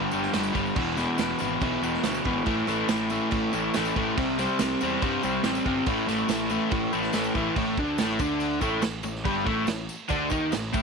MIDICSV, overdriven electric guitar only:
0, 0, Header, 1, 2, 480
1, 0, Start_track
1, 0, Tempo, 425230
1, 857, Time_signature, 4, 2, 24, 8
1, 12215, End_track
2, 0, Start_track
2, 0, Title_t, "Overdriven electric guitar"
2, 0, Program_c, 0, 29
2, 0, Note_on_c, 0, 43, 102
2, 0, Note_on_c, 0, 50, 106
2, 0, Note_on_c, 0, 55, 106
2, 123, Note_off_c, 0, 43, 0
2, 131, Note_off_c, 0, 50, 0
2, 137, Note_on_c, 0, 43, 76
2, 138, Note_off_c, 0, 55, 0
2, 144, Note_on_c, 0, 50, 78
2, 152, Note_on_c, 0, 55, 89
2, 362, Note_off_c, 0, 43, 0
2, 368, Note_off_c, 0, 50, 0
2, 375, Note_on_c, 0, 43, 85
2, 378, Note_off_c, 0, 55, 0
2, 381, Note_on_c, 0, 50, 95
2, 391, Note_on_c, 0, 55, 101
2, 587, Note_off_c, 0, 43, 0
2, 597, Note_off_c, 0, 50, 0
2, 599, Note_off_c, 0, 55, 0
2, 601, Note_on_c, 0, 43, 91
2, 610, Note_on_c, 0, 50, 94
2, 612, Note_on_c, 0, 55, 115
2, 835, Note_off_c, 0, 43, 0
2, 840, Note_off_c, 0, 50, 0
2, 841, Note_off_c, 0, 55, 0
2, 850, Note_on_c, 0, 40, 90
2, 870, Note_on_c, 0, 47, 98
2, 877, Note_on_c, 0, 52, 118
2, 1079, Note_off_c, 0, 40, 0
2, 1092, Note_off_c, 0, 47, 0
2, 1092, Note_on_c, 0, 40, 76
2, 1102, Note_off_c, 0, 52, 0
2, 1106, Note_on_c, 0, 47, 82
2, 1106, Note_on_c, 0, 52, 80
2, 1319, Note_off_c, 0, 40, 0
2, 1328, Note_off_c, 0, 47, 0
2, 1332, Note_on_c, 0, 40, 102
2, 1341, Note_on_c, 0, 47, 93
2, 1342, Note_off_c, 0, 52, 0
2, 1346, Note_on_c, 0, 52, 111
2, 1560, Note_off_c, 0, 40, 0
2, 1571, Note_off_c, 0, 47, 0
2, 1573, Note_on_c, 0, 40, 86
2, 1583, Note_off_c, 0, 52, 0
2, 1584, Note_on_c, 0, 47, 101
2, 1587, Note_on_c, 0, 52, 97
2, 1807, Note_off_c, 0, 40, 0
2, 1820, Note_on_c, 0, 40, 101
2, 1824, Note_off_c, 0, 47, 0
2, 1838, Note_off_c, 0, 52, 0
2, 1838, Note_on_c, 0, 47, 105
2, 1843, Note_on_c, 0, 52, 110
2, 2042, Note_off_c, 0, 40, 0
2, 2055, Note_off_c, 0, 47, 0
2, 2055, Note_on_c, 0, 40, 81
2, 2066, Note_off_c, 0, 52, 0
2, 2068, Note_on_c, 0, 47, 84
2, 2071, Note_on_c, 0, 52, 89
2, 2291, Note_off_c, 0, 40, 0
2, 2299, Note_off_c, 0, 47, 0
2, 2305, Note_on_c, 0, 40, 84
2, 2312, Note_on_c, 0, 47, 101
2, 2320, Note_off_c, 0, 52, 0
2, 2325, Note_on_c, 0, 52, 99
2, 2540, Note_off_c, 0, 40, 0
2, 2543, Note_off_c, 0, 47, 0
2, 2553, Note_on_c, 0, 40, 95
2, 2556, Note_on_c, 0, 47, 97
2, 2557, Note_off_c, 0, 52, 0
2, 2561, Note_on_c, 0, 52, 96
2, 2773, Note_off_c, 0, 47, 0
2, 2775, Note_off_c, 0, 40, 0
2, 2777, Note_on_c, 0, 45, 93
2, 2779, Note_off_c, 0, 52, 0
2, 2783, Note_on_c, 0, 52, 100
2, 2795, Note_on_c, 0, 57, 117
2, 3012, Note_off_c, 0, 45, 0
2, 3018, Note_off_c, 0, 57, 0
2, 3025, Note_on_c, 0, 45, 77
2, 3027, Note_off_c, 0, 52, 0
2, 3032, Note_on_c, 0, 52, 89
2, 3032, Note_on_c, 0, 57, 94
2, 3253, Note_off_c, 0, 45, 0
2, 3266, Note_on_c, 0, 45, 87
2, 3268, Note_off_c, 0, 57, 0
2, 3272, Note_off_c, 0, 52, 0
2, 3276, Note_on_c, 0, 52, 103
2, 3282, Note_on_c, 0, 57, 93
2, 3498, Note_off_c, 0, 45, 0
2, 3512, Note_off_c, 0, 57, 0
2, 3512, Note_on_c, 0, 45, 98
2, 3518, Note_off_c, 0, 52, 0
2, 3522, Note_on_c, 0, 52, 90
2, 3525, Note_on_c, 0, 57, 98
2, 3727, Note_off_c, 0, 45, 0
2, 3737, Note_off_c, 0, 57, 0
2, 3740, Note_on_c, 0, 45, 108
2, 3743, Note_off_c, 0, 52, 0
2, 3747, Note_on_c, 0, 52, 109
2, 3750, Note_on_c, 0, 57, 121
2, 3973, Note_off_c, 0, 45, 0
2, 3987, Note_on_c, 0, 45, 93
2, 3989, Note_off_c, 0, 52, 0
2, 3991, Note_off_c, 0, 57, 0
2, 3994, Note_on_c, 0, 52, 100
2, 4004, Note_on_c, 0, 57, 97
2, 4225, Note_off_c, 0, 45, 0
2, 4237, Note_off_c, 0, 57, 0
2, 4238, Note_on_c, 0, 45, 84
2, 4240, Note_off_c, 0, 52, 0
2, 4244, Note_on_c, 0, 52, 96
2, 4251, Note_on_c, 0, 57, 89
2, 4457, Note_off_c, 0, 45, 0
2, 4471, Note_off_c, 0, 57, 0
2, 4471, Note_on_c, 0, 45, 100
2, 4475, Note_off_c, 0, 52, 0
2, 4480, Note_on_c, 0, 52, 94
2, 4485, Note_on_c, 0, 57, 103
2, 4693, Note_off_c, 0, 45, 0
2, 4700, Note_off_c, 0, 57, 0
2, 4702, Note_on_c, 0, 48, 114
2, 4711, Note_off_c, 0, 52, 0
2, 4715, Note_on_c, 0, 55, 104
2, 4719, Note_on_c, 0, 60, 120
2, 4930, Note_off_c, 0, 48, 0
2, 4940, Note_off_c, 0, 55, 0
2, 4944, Note_off_c, 0, 60, 0
2, 4944, Note_on_c, 0, 48, 85
2, 4954, Note_on_c, 0, 55, 84
2, 4958, Note_on_c, 0, 60, 86
2, 5177, Note_off_c, 0, 48, 0
2, 5186, Note_off_c, 0, 55, 0
2, 5190, Note_on_c, 0, 48, 94
2, 5194, Note_off_c, 0, 60, 0
2, 5199, Note_on_c, 0, 55, 110
2, 5207, Note_on_c, 0, 60, 113
2, 5422, Note_off_c, 0, 48, 0
2, 5429, Note_off_c, 0, 55, 0
2, 5436, Note_on_c, 0, 48, 91
2, 5437, Note_off_c, 0, 60, 0
2, 5443, Note_on_c, 0, 55, 93
2, 5451, Note_on_c, 0, 60, 98
2, 5662, Note_off_c, 0, 48, 0
2, 5665, Note_off_c, 0, 55, 0
2, 5673, Note_off_c, 0, 60, 0
2, 5676, Note_on_c, 0, 48, 110
2, 5679, Note_on_c, 0, 55, 110
2, 5686, Note_on_c, 0, 60, 114
2, 5898, Note_off_c, 0, 48, 0
2, 5900, Note_off_c, 0, 55, 0
2, 5908, Note_off_c, 0, 60, 0
2, 5912, Note_on_c, 0, 48, 83
2, 5914, Note_on_c, 0, 55, 91
2, 5922, Note_on_c, 0, 60, 82
2, 6121, Note_off_c, 0, 48, 0
2, 6130, Note_off_c, 0, 55, 0
2, 6135, Note_off_c, 0, 60, 0
2, 6135, Note_on_c, 0, 48, 97
2, 6144, Note_on_c, 0, 55, 93
2, 6148, Note_on_c, 0, 60, 96
2, 6375, Note_off_c, 0, 48, 0
2, 6386, Note_off_c, 0, 55, 0
2, 6389, Note_on_c, 0, 48, 87
2, 6397, Note_off_c, 0, 60, 0
2, 6400, Note_on_c, 0, 55, 95
2, 6410, Note_on_c, 0, 60, 95
2, 6609, Note_off_c, 0, 48, 0
2, 6614, Note_off_c, 0, 55, 0
2, 6620, Note_off_c, 0, 60, 0
2, 6634, Note_on_c, 0, 45, 105
2, 6634, Note_on_c, 0, 52, 114
2, 6643, Note_on_c, 0, 57, 112
2, 6839, Note_off_c, 0, 45, 0
2, 6853, Note_on_c, 0, 45, 79
2, 6854, Note_off_c, 0, 52, 0
2, 6859, Note_off_c, 0, 57, 0
2, 6868, Note_on_c, 0, 52, 78
2, 6873, Note_on_c, 0, 57, 98
2, 7074, Note_off_c, 0, 45, 0
2, 7082, Note_off_c, 0, 52, 0
2, 7087, Note_on_c, 0, 45, 98
2, 7096, Note_off_c, 0, 57, 0
2, 7096, Note_on_c, 0, 52, 93
2, 7109, Note_on_c, 0, 57, 104
2, 7321, Note_off_c, 0, 45, 0
2, 7332, Note_off_c, 0, 52, 0
2, 7335, Note_on_c, 0, 45, 91
2, 7337, Note_off_c, 0, 57, 0
2, 7346, Note_on_c, 0, 52, 92
2, 7351, Note_on_c, 0, 57, 107
2, 7561, Note_off_c, 0, 45, 0
2, 7570, Note_off_c, 0, 52, 0
2, 7574, Note_on_c, 0, 45, 98
2, 7582, Note_off_c, 0, 57, 0
2, 7584, Note_on_c, 0, 52, 93
2, 7595, Note_on_c, 0, 57, 120
2, 7799, Note_off_c, 0, 45, 0
2, 7808, Note_off_c, 0, 52, 0
2, 7813, Note_on_c, 0, 45, 82
2, 7818, Note_off_c, 0, 57, 0
2, 7821, Note_on_c, 0, 52, 83
2, 7831, Note_on_c, 0, 57, 87
2, 8042, Note_off_c, 0, 45, 0
2, 8054, Note_off_c, 0, 52, 0
2, 8055, Note_on_c, 0, 45, 93
2, 8056, Note_off_c, 0, 57, 0
2, 8068, Note_on_c, 0, 52, 101
2, 8070, Note_on_c, 0, 57, 97
2, 8284, Note_off_c, 0, 45, 0
2, 8295, Note_off_c, 0, 52, 0
2, 8297, Note_on_c, 0, 45, 94
2, 8303, Note_off_c, 0, 57, 0
2, 8309, Note_on_c, 0, 52, 100
2, 8316, Note_on_c, 0, 57, 97
2, 8519, Note_off_c, 0, 45, 0
2, 8525, Note_off_c, 0, 52, 0
2, 8529, Note_off_c, 0, 57, 0
2, 8541, Note_on_c, 0, 45, 115
2, 8550, Note_on_c, 0, 57, 105
2, 8768, Note_off_c, 0, 45, 0
2, 8772, Note_off_c, 0, 57, 0
2, 8795, Note_on_c, 0, 50, 79
2, 8802, Note_on_c, 0, 62, 82
2, 9014, Note_off_c, 0, 50, 0
2, 9018, Note_off_c, 0, 62, 0
2, 9024, Note_on_c, 0, 45, 85
2, 9029, Note_on_c, 0, 57, 97
2, 9249, Note_off_c, 0, 45, 0
2, 9251, Note_off_c, 0, 57, 0
2, 9260, Note_on_c, 0, 50, 99
2, 9268, Note_on_c, 0, 62, 98
2, 9719, Note_off_c, 0, 50, 0
2, 9724, Note_on_c, 0, 45, 92
2, 9727, Note_off_c, 0, 62, 0
2, 9731, Note_on_c, 0, 57, 92
2, 9953, Note_off_c, 0, 45, 0
2, 9962, Note_off_c, 0, 57, 0
2, 9966, Note_on_c, 0, 45, 72
2, 10158, Note_off_c, 0, 45, 0
2, 10210, Note_on_c, 0, 45, 82
2, 10400, Note_off_c, 0, 45, 0
2, 10432, Note_on_c, 0, 43, 91
2, 10447, Note_on_c, 0, 55, 109
2, 10664, Note_on_c, 0, 45, 81
2, 10672, Note_off_c, 0, 43, 0
2, 10676, Note_on_c, 0, 57, 87
2, 10680, Note_off_c, 0, 55, 0
2, 10897, Note_off_c, 0, 45, 0
2, 10911, Note_on_c, 0, 45, 76
2, 10914, Note_off_c, 0, 57, 0
2, 11111, Note_off_c, 0, 45, 0
2, 11388, Note_on_c, 0, 50, 101
2, 11401, Note_on_c, 0, 62, 112
2, 11629, Note_off_c, 0, 50, 0
2, 11633, Note_on_c, 0, 51, 78
2, 11637, Note_off_c, 0, 62, 0
2, 11648, Note_on_c, 0, 63, 114
2, 11868, Note_off_c, 0, 51, 0
2, 11872, Note_on_c, 0, 45, 72
2, 11881, Note_off_c, 0, 63, 0
2, 12073, Note_off_c, 0, 45, 0
2, 12109, Note_on_c, 0, 45, 100
2, 12120, Note_on_c, 0, 57, 109
2, 12215, Note_off_c, 0, 45, 0
2, 12215, Note_off_c, 0, 57, 0
2, 12215, End_track
0, 0, End_of_file